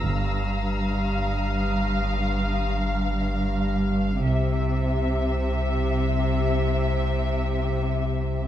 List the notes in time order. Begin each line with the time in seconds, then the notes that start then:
Already playing: A#5 E6 F6
0.04 G1 G2 F5
0.93 D#6
4.23 C2 C3 E5